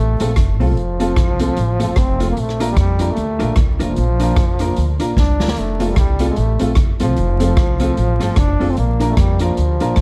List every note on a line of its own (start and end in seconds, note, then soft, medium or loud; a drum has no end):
0.00 0.17 A1 loud
0.00 0.34 A3 medium
0.20 0.35 A#1 medium
0.20 0.33 A3 medium
0.20 0.32 C4 medium
0.20 0.33 C4 medium
0.20 0.32 F4 medium
0.20 0.33 F4 medium
0.20 0.33 A4 loud
0.20 0.32 A4 medium
0.20 closed hi-hat medium
0.36 0.61 F1 medium
0.36 kick medium
0.36 cross-stick loud
0.36 closed hi-hat medium
0.60 0.78 C2 medium
0.60 1.99 F3 medium
0.60 0.73 A3 medium
0.60 0.72 C4 medium
0.60 0.73 C4 medium
0.60 0.73 F4 medium
0.60 0.72 F4 medium
0.60 0.73 A4 medium
0.60 0.72 A4 medium
0.60 open hi-hat soft
0.77 1.11 F1 loud
0.77 closed hi-hat medium
1.00 1.12 A3 loud
1.00 1.12 C4 medium
1.00 1.13 C4 medium
1.00 1.12 F4 medium
1.00 1.13 F4 medium
1.00 1.13 A4 loud
1.00 1.12 A4 medium
1.00 closed hi-hat loud
1.16 1.51 C2 medium
1.16 kick loud
1.16 cross-stick loud
1.16 closed hi-hat medium
1.40 1.52 A3 medium
1.40 1.52 C4 medium
1.40 1.53 C4 medium
1.40 1.52 F4 medium
1.40 1.53 F4 medium
1.40 1.52 A4 medium
1.40 1.53 A4 medium
1.40 closed hi-hat loud
1.57 1.83 A1 loud
1.57 closed hi-hat medium
1.79 1.95 G1 medium
1.79 1.92 A3 medium
1.79 1.91 C4 medium
1.79 1.93 C4 medium
1.79 1.92 F4 medium
1.79 1.93 F4 medium
1.79 1.92 A4 medium
1.79 1.93 A4 loud
1.79 closed hi-hat loud
1.96 2.31 F1 medium
1.96 2.29 C4 loud
1.96 kick medium
1.96 cross-stick loud
1.96 closed hi-hat medium
2.20 2.32 A3 medium
2.20 2.31 C4 medium
2.20 2.33 C4 medium
2.20 2.32 F4 loud
2.20 2.33 F4 medium
2.20 2.32 A4 medium
2.20 2.33 A4 medium
2.20 closed hi-hat medium
2.30 2.41 A#3 medium
2.37 2.71 A#1 medium
2.37 2.70 A3 medium
2.37 closed hi-hat medium
2.49 cross-stick medium
2.60 2.72 A#3 loud
2.60 2.72 D4 medium
2.60 2.72 D4 loud
2.60 2.72 F4 medium
2.60 2.73 F4 medium
2.60 2.73 A#4 loud
2.60 2.72 A#4 loud
2.60 closed hi-hat loud
2.71 2.78 G3 medium
2.77 3.11 F2 loud
2.77 3.12 G3 loud
2.77 kick loud
2.77 cross-stick loud
2.77 closed hi-hat medium
2.99 3.12 A#3 loud
2.99 3.11 D4 medium
2.99 3.13 D4 medium
2.99 3.12 F4 medium
2.99 3.13 F4 medium
2.99 3.12 A#4 medium
2.99 3.13 A#4 loud
2.99 closed hi-hat loud
3.11 3.58 A3 medium
3.17 3.42 D2 loud
3.17 closed hi-hat medium
3.39 3.55 A#1 medium
3.39 3.52 A#3 medium
3.39 3.51 D4 medium
3.39 3.53 D4 medium
3.39 3.52 F4 medium
3.39 3.53 F4 medium
3.39 3.52 A#4 loud
3.39 3.53 A#4 loud
3.39 closed hi-hat medium
3.56 3.77 C2 medium
3.56 kick loud
3.56 cross-stick loud
3.56 closed hi-hat medium
3.79 3.95 F1 medium
3.79 4.89 F3 medium
3.79 3.93 A#3 medium
3.79 3.91 D4 medium
3.79 3.93 D4 medium
3.79 3.92 F4 loud
3.79 3.93 F4 medium
3.79 3.92 A#4 loud
3.79 3.93 A#4 medium
3.79 closed hi-hat medium
3.96 4.31 A#1 loud
3.96 closed hi-hat medium
4.20 4.33 A#3 loud
4.20 4.32 D4 medium
4.20 4.33 D4 loud
4.20 4.32 F4 medium
4.20 4.33 F4 loud
4.20 4.32 A#4 medium
4.20 4.33 A#4 loud
4.20 closed hi-hat loud
4.36 4.71 F2 loud
4.36 kick loud
4.36 cross-stick loud
4.36 closed hi-hat medium
4.59 4.72 A#3 medium
4.59 4.72 D4 medium
4.59 4.73 D4 medium
4.59 4.73 F4 medium
4.59 4.72 F4 medium
4.59 4.72 A#4 medium
4.59 4.73 A#4 loud
4.59 closed hi-hat medium
4.76 4.97 D2 loud
4.76 closed hi-hat medium
5.00 5.15 A#1 medium
5.00 5.12 A#3 medium
5.00 5.12 D4 medium
5.00 5.13 D4 medium
5.00 5.12 F4 medium
5.00 5.13 F4 medium
5.00 5.12 A#4 medium
5.00 5.13 A#4 medium
5.00 closed hi-hat medium
5.17 5.37 C2 medium
5.17 5.51 D4 medium
5.17 kick medium
5.17 snare medium
5.40 5.55 D2 medium
5.40 5.52 A#3 medium
5.40 5.52 D4 medium
5.40 5.53 D4 medium
5.40 5.52 F4 medium
5.40 5.53 F4 medium
5.40 5.53 A#4 loud
5.40 5.52 A#4 loud
5.40 snare medium
5.48 5.60 A#3 medium
5.48 snare medium
5.57 5.91 F1 medium
5.57 5.91 A3 medium
5.57 closed hi-hat medium
5.80 5.92 A3 loud
5.80 5.92 C4 medium
5.80 5.93 C4 medium
5.80 5.92 F4 medium
5.80 5.93 F4 medium
5.80 5.93 A4 loud
5.80 5.92 A4 medium
5.80 closed hi-hat loud
5.90 5.97 G3 medium
5.96 6.31 C2 medium
5.96 6.27 G3 medium
5.96 kick loud
5.96 cross-stick loud
5.96 closed hi-hat medium
6.19 6.32 A3 loud
6.19 6.32 C4 medium
6.19 6.33 C4 medium
6.19 6.32 F4 medium
6.19 6.33 F4 medium
6.19 6.32 A4 medium
6.19 6.33 A4 loud
6.19 closed hi-hat loud
6.29 6.74 A3 medium
6.36 6.57 A1 loud
6.36 closed hi-hat medium
6.59 6.75 A#1 loud
6.59 6.72 A3 loud
6.59 6.71 C4 medium
6.59 6.73 C4 medium
6.59 6.72 F4 medium
6.59 6.73 F4 medium
6.59 6.72 A4 medium
6.59 6.73 A4 medium
6.59 closed hi-hat medium
6.75 7.03 F1 medium
6.75 kick loud
6.75 cross-stick loud
6.75 closed hi-hat medium
7.00 7.15 C2 loud
7.00 8.40 F3 medium
7.00 7.13 A3 medium
7.00 7.12 C4 medium
7.00 7.13 C4 medium
7.00 7.12 F4 loud
7.00 7.13 F4 medium
7.00 7.12 A4 medium
7.00 7.13 A4 medium
7.00 closed hi-hat medium
7.16 7.51 F1 loud
7.16 closed hi-hat medium
7.40 7.53 A3 loud
7.40 7.52 C4 medium
7.40 7.53 C4 medium
7.40 7.52 F4 medium
7.40 7.53 F4 medium
7.40 7.52 A4 medium
7.40 7.53 A4 loud
7.40 closed hi-hat loud
7.57 7.91 C2 medium
7.57 kick loud
7.57 cross-stick loud
7.57 closed hi-hat medium
7.80 7.93 A3 medium
7.80 7.92 C4 medium
7.80 7.93 C4 medium
7.80 7.92 F4 medium
7.80 7.93 F4 medium
7.80 7.92 A4 medium
7.80 7.93 A4 loud
7.80 closed hi-hat loud
7.97 8.17 A1 loud
7.97 closed hi-hat medium
8.20 8.35 G1 medium
8.20 8.33 A3 loud
8.20 8.32 C4 medium
8.20 8.33 C4 medium
8.20 8.32 F4 medium
8.20 8.33 F4 medium
8.20 8.32 A4 loud
8.20 8.33 A4 loud
8.20 cross-stick medium
8.20 closed hi-hat medium
8.36 8.57 F1 medium
8.36 8.72 D4 loud
8.36 kick loud
8.36 cross-stick loud
8.36 closed hi-hat medium
8.60 8.75 F1 medium
8.60 8.73 A3 medium
8.60 8.72 C4 medium
8.60 8.73 C4 medium
8.60 8.72 F4 loud
8.60 8.73 F4 medium
8.60 8.72 A4 loud
8.60 8.73 A4 medium
8.60 open hi-hat soft
8.71 8.78 C4 medium
8.77 9.11 A#1 loud
8.77 9.12 A#3 medium
8.77 closed hi-hat medium
9.00 9.13 A#3 loud
9.00 9.12 D4 medium
9.00 9.13 D4 medium
9.00 9.12 F4 medium
9.00 9.13 F4 medium
9.00 9.12 A#4 medium
9.00 9.13 A#4 loud
9.00 closed hi-hat loud
9.10 9.20 A3 medium
9.17 9.51 F2 medium
9.17 9.41 G3 medium
9.17 kick loud
9.17 cross-stick loud
9.17 closed hi-hat medium
9.39 10.01 F3 medium
9.39 9.53 A#3 loud
9.39 9.52 D4 medium
9.39 9.53 D4 medium
9.39 9.52 F4 medium
9.39 9.53 F4 medium
9.39 9.52 A#4 loud
9.39 9.53 A#4 loud
9.39 closed hi-hat loud
9.57 9.78 D2 loud
9.57 closed hi-hat medium
9.80 9.95 A#1 medium
9.80 9.93 A#3 medium
9.80 9.93 D4 medium
9.80 9.92 D4 medium
9.80 9.93 F4 medium
9.80 9.92 F4 medium
9.80 9.93 A#4 loud
9.80 9.93 A#4 medium
9.80 closed hi-hat medium
9.96 10.01 C2 medium
9.96 kick loud
9.96 cross-stick medium
9.96 closed hi-hat medium